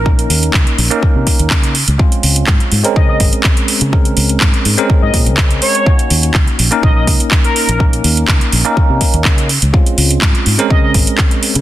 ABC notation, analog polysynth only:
X:1
M:4/4
L:1/16
Q:1/4=124
K:Db
V:1 name="Analog polysynth"
z16 | z8 e e z6 | z8 z e z4 d2 | z8 e e z3 B3 |
z16 | z8 e e z6 |]